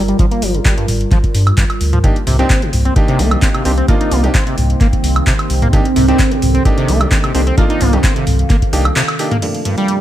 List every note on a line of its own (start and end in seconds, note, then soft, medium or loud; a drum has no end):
0.00 0.13 G1 medium
0.00 2.00 G3 medium
0.00 2.00 F4 medium
0.00 2.00 A#4 medium
0.00 2.04 D5 medium
0.00 2.67 A#5 medium
0.08 0.17 G3 medium
0.08 closed hi-hat soft
0.19 0.26 F3 loud
0.19 kick loud
0.19 closed hi-hat medium
0.31 0.44 A#3 medium
0.31 closed hi-hat soft
0.42 0.59 G1 loud
0.42 0.56 F3 medium
0.42 open hi-hat loud
0.54 0.60 C3 medium
0.54 closed hi-hat soft
0.65 0.75 G3 medium
0.65 kick loud
0.65 clap loud
0.65 closed hi-hat medium
0.78 0.86 G2 medium
0.78 closed hi-hat soft
0.88 1.05 G1 loud
0.88 mid tom medium
0.88 open hi-hat medium
1.01 closed hi-hat soft
1.11 1.18 F3 loud
1.11 kick loud
1.11 clap soft
1.11 closed hi-hat medium
1.24 kick medium
1.24 closed hi-hat soft
1.35 1.52 G2 loud
1.35 open hi-hat loud
1.47 closed hi-hat soft
1.47 high woodblock medium
1.58 1.64 G2 loud
1.58 kick loud
1.58 clap loud
1.58 closed hi-hat medium
1.70 closed hi-hat soft
1.70 high woodblock medium
1.81 1.98 D2 medium
1.81 open hi-hat loud
1.93 1.99 F3 medium
1.93 closed hi-hat soft
1.93 mid tom loud
2.04 2.08 C3 medium
2.04 9.38 C3 medium
2.04 9.38 D#3 medium
2.04 2.13 A#3 medium
2.04 5.69 A#3 medium
2.04 10.01 C4 medium
2.04 2.13 D4 medium
2.04 2.13 D#4 medium
2.04 2.13 G4 medium
2.04 kick loud
2.04 closed hi-hat medium
2.16 closed hi-hat soft
2.27 2.44 C2 loud
2.27 2.37 C3 medium
2.27 mid tom medium
2.27 open hi-hat loud
2.39 2.48 A#3 medium
2.39 2.64 C4 loud
2.39 2.48 D4 medium
2.39 2.48 D#4 medium
2.39 2.48 G4 loud
2.39 closed hi-hat soft
2.50 kick loud
2.50 clap loud
2.50 closed hi-hat medium
2.62 2.71 C3 medium
2.62 closed hi-hat soft
2.73 2.90 C2 loud
2.73 mid tom medium
2.73 open hi-hat medium
2.85 2.94 C4 medium
2.85 closed hi-hat soft
2.96 3.63 A#3 medium
2.96 3.63 D4 medium
2.96 3.63 D#4 medium
2.96 3.63 G4 medium
2.96 kick loud
2.96 closed hi-hat medium
3.08 3.21 C3 loud
3.08 closed hi-hat soft
3.14 6.64 D#4 medium
3.19 3.36 C2 medium
3.19 3.33 A#3 medium
3.19 open hi-hat loud
3.31 3.37 F3 medium
3.31 closed hi-hat soft
3.31 high woodblock medium
3.42 3.49 C4 medium
3.42 kick loud
3.42 clap loud
3.42 closed hi-hat medium
3.54 3.63 C3 medium
3.54 closed hi-hat soft
3.54 high woodblock medium
3.65 3.82 C2 medium
3.65 3.71 A#3 medium
3.65 3.72 C4 medium
3.65 3.71 D4 medium
3.65 3.71 D#4 medium
3.65 3.71 G4 medium
3.65 open hi-hat medium
3.78 3.87 C4 medium
3.78 closed hi-hat soft
3.88 4.21 A#3 medium
3.88 3.95 A#3 loud
3.88 4.21 D4 medium
3.88 4.21 D#4 medium
3.88 4.21 F4 medium
3.88 kick loud
3.88 closed hi-hat medium
4.01 4.13 D#4 medium
4.01 closed hi-hat soft
4.11 4.28 C2 loud
4.11 4.25 A#3 medium
4.11 open hi-hat loud
4.24 4.30 F3 medium
4.24 4.29 A#3 medium
4.24 4.29 D4 medium
4.24 4.29 D#4 medium
4.24 4.29 G4 medium
4.24 closed hi-hat soft
4.35 4.45 C4 medium
4.35 kick loud
4.35 clap loud
4.35 closed hi-hat medium
4.47 4.56 C3 medium
4.47 closed hi-hat soft
4.58 4.75 C2 loud
4.58 mid tom medium
4.58 open hi-hat medium
4.70 closed hi-hat soft
4.81 4.87 A#3 loud
4.81 kick loud
4.81 clap soft
4.81 closed hi-hat medium
4.93 kick medium
4.93 closed hi-hat soft
5.04 5.21 C2 medium
5.04 open hi-hat loud
5.16 closed hi-hat soft
5.16 high woodblock medium
5.27 5.34 C3 loud
5.27 kick loud
5.27 clap loud
5.27 closed hi-hat medium
5.39 closed hi-hat soft
5.39 high woodblock medium
5.50 5.67 C2 medium
5.50 open hi-hat medium
5.62 5.68 A#3 medium
5.62 closed hi-hat soft
5.62 mid tom medium
5.73 5.77 C3 medium
5.73 5.83 A#3 medium
5.73 5.83 D4 medium
5.73 5.83 D#4 medium
5.73 5.83 G4 medium
5.73 9.39 A4 medium
5.73 kick loud
5.73 closed hi-hat medium
5.85 closed hi-hat soft
5.96 6.13 C2 loud
5.96 6.06 C3 medium
5.96 mid tom medium
5.96 open hi-hat loud
6.08 6.17 A#3 medium
6.08 6.33 C4 loud
6.08 6.17 D4 medium
6.08 6.17 D#4 medium
6.08 6.17 G4 loud
6.08 closed hi-hat soft
6.19 kick loud
6.19 clap loud
6.19 closed hi-hat medium
6.31 6.40 C3 medium
6.31 closed hi-hat soft
6.42 6.59 C2 loud
6.42 mid tom medium
6.42 open hi-hat medium
6.50 10.01 F5 medium
6.55 6.63 C4 medium
6.55 closed hi-hat soft
6.65 7.32 A#3 medium
6.65 7.32 D4 medium
6.65 7.32 D#4 medium
6.65 7.32 G4 medium
6.65 kick loud
6.65 closed hi-hat medium
6.78 6.90 C3 loud
6.78 closed hi-hat soft
6.88 7.05 C2 medium
6.88 7.02 A#3 medium
6.88 open hi-hat loud
7.01 7.07 F3 medium
7.01 closed hi-hat soft
7.01 high woodblock medium
7.11 7.18 C4 medium
7.11 kick loud
7.11 clap loud
7.11 closed hi-hat medium
7.24 7.33 C3 medium
7.24 closed hi-hat soft
7.24 high woodblock medium
7.35 7.52 C2 medium
7.35 7.41 A#3 medium
7.35 7.41 C4 medium
7.35 7.41 D4 medium
7.35 7.41 D#4 medium
7.35 7.41 G4 medium
7.35 open hi-hat medium
7.47 7.56 C4 medium
7.47 closed hi-hat soft
7.58 7.64 A#3 loud
7.58 7.90 A#3 medium
7.58 7.90 D4 medium
7.58 7.90 D#4 medium
7.58 7.90 F4 medium
7.58 kick loud
7.58 closed hi-hat medium
7.70 7.82 D#4 medium
7.70 closed hi-hat soft
7.81 7.98 C2 loud
7.81 7.95 A#3 medium
7.81 mid tom medium
7.81 open hi-hat loud
7.93 7.99 F3 medium
7.93 7.98 A#3 medium
7.93 7.98 D4 medium
7.93 7.98 D#4 medium
7.93 7.98 G4 medium
7.93 closed hi-hat soft
8.04 8.14 C4 medium
8.04 kick loud
8.04 clap loud
8.04 closed hi-hat medium
8.16 8.25 C3 medium
8.16 closed hi-hat soft
8.27 8.44 C2 loud
8.27 mid tom medium
8.27 open hi-hat medium
8.39 closed hi-hat soft
8.50 8.57 A#3 loud
8.50 kick loud
8.50 clap soft
8.50 closed hi-hat medium
8.62 kick medium
8.62 closed hi-hat soft
8.73 8.90 C2 medium
8.73 8.83 A#3 loud
8.73 8.83 D4 medium
8.73 8.83 D#4 medium
8.73 8.83 G4 loud
8.73 open hi-hat loud
8.85 closed hi-hat soft
8.85 high woodblock medium
8.96 9.03 C3 loud
8.96 clap loud
8.96 closed hi-hat medium
9.08 closed hi-hat soft
9.08 high woodblock medium
9.19 9.29 A#3 medium
9.19 9.29 D4 medium
9.19 9.29 D#4 medium
9.19 9.29 G4 medium
9.19 open hi-hat medium
9.31 9.37 A#3 medium
9.31 closed hi-hat soft
9.31 mid tom medium
9.42 10.01 G2 medium
9.42 9.46 G2 medium
9.42 10.01 F3 medium
9.42 10.01 A3 medium
9.42 10.01 A#3 medium
9.42 10.01 D4 medium
9.42 10.01 G4 medium
9.42 closed hi-hat medium
9.42 crash medium
9.55 closed hi-hat soft
9.65 9.75 G2 medium
9.65 closed hi-hat medium
9.78 10.01 G3 loud
9.78 closed hi-hat soft
9.88 closed hi-hat medium